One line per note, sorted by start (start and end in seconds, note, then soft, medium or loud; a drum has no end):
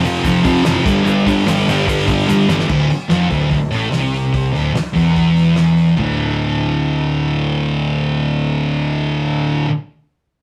0.03 0.17 F1 loud
0.03 0.23 F2 medium
0.03 0.24 C3 medium
0.03 0.25 F3 loud
0.03 open hi-hat medium
0.03 shaker medium
0.15 shaker soft
0.24 0.36 F2 medium
0.24 0.43 F2 loud
0.24 0.43 C3 loud
0.24 0.44 F3 loud
0.24 kick medium
0.24 open hi-hat medium
0.24 shaker medium
0.44 0.57 F1 medium
0.44 0.63 F2 medium
0.44 0.64 C3 medium
0.44 0.65 F3 medium
0.44 kick loud
0.44 open hi-hat medium
0.44 shaker medium
0.64 0.77 F#1 loud
0.64 0.84 F2 medium
0.64 0.84 C3 medium
0.64 0.85 F3 loud
0.64 snare loud
0.64 open hi-hat medium
0.64 shaker medium
0.85 0.98 G1 medium
0.85 1.03 G2 loud
0.85 1.04 D3 loud
0.85 1.05 G3 loud
0.85 kick loud
0.85 crash loud
0.85 shaker medium
1.04 1.18 G1 medium
1.04 1.26 G2 medium
1.04 1.26 D3 medium
1.04 1.27 G3 loud
1.04 shaker medium
1.19 shaker soft
1.26 1.38 G1 loud
1.26 1.46 G2 medium
1.26 1.47 D3 loud
1.26 1.47 G3 loud
1.26 kick medium
1.26 open hi-hat medium
1.26 shaker medium
1.46 1.59 G1 loud
1.46 1.66 G2 loud
1.46 1.67 D3 medium
1.46 1.68 G3 loud
1.46 snare loud
1.46 open hi-hat medium
1.46 shaker loud
1.59 shaker soft
1.68 1.80 G1 medium
1.68 1.85 G2 medium
1.68 1.86 D3 medium
1.68 1.87 G3 medium
1.68 open hi-hat medium
1.68 shaker medium
1.87 2.05 G2 medium
1.87 2.00 G2 medium
1.87 2.07 D3 loud
1.87 2.07 G3 loud
1.87 kick medium
1.87 open hi-hat medium
1.87 shaker loud
1.99 shaker soft
2.07 2.20 G1 medium
2.07 2.26 G2 medium
2.07 2.27 D3 medium
2.07 2.29 G3 medium
2.07 kick loud
2.07 open hi-hat medium
2.07 shaker medium
2.19 shaker soft
2.27 2.42 G1 medium
2.27 2.48 G2 medium
2.27 2.49 D3 medium
2.27 2.49 G3 loud
2.27 snare medium
2.27 shaker loud
2.40 shaker soft
2.49 2.61 G1 medium
2.49 2.68 G2 loud
2.49 2.69 D3 medium
2.49 2.69 G3 loud
2.49 snare loud
2.49 shaker medium
2.59 snare loud
2.69 2.89 D1 medium
2.69 2.88 D2 medium
2.69 kick loud
2.69 crash loud
2.90 muted distorted electric guitar stroke medium
2.90 muted picked electric bass stroke soft
2.90 open hi-hat medium
3.09 3.29 F1 loud
3.09 3.30 F2 loud
3.09 snare loud
3.09 open hi-hat medium
3.30 3.50 D1 medium
3.30 3.50 D2 medium
3.30 kick medium
3.30 open hi-hat medium
3.51 3.70 D1 medium
3.51 3.68 D2 medium
3.51 kick medium
3.51 open hi-hat medium
3.71 3.90 A1 loud
3.71 3.90 A2 medium
3.71 open hi-hat medium
3.91 4.30 C2 medium
3.91 4.32 C3 loud
3.91 snare loud
3.91 open hi-hat medium
4.14 open hi-hat medium
4.33 4.53 C2 medium
4.33 4.52 C3 medium
4.33 kick loud
4.33 open hi-hat medium
4.53 4.73 D1 medium
4.53 4.72 D2 medium
4.53 open hi-hat soft
4.73 muted picked electric bass stroke soft
4.73 muted distorted electric guitar stroke medium
4.73 snare loud
4.73 open hi-hat medium
4.93 5.95 E1 medium
4.93 5.96 E2 medium
4.93 kick medium
4.93 open hi-hat medium
5.16 kick medium
5.16 open hi-hat medium
5.37 open hi-hat medium
5.56 snare loud
5.56 open hi-hat medium
5.77 open hi-hat medium
5.97 9.62 D1 medium
5.97 9.66 D2 medium
5.97 9.68 A2 medium
5.97 kick loud
5.97 floor tom medium
6.01 9.70 D3 medium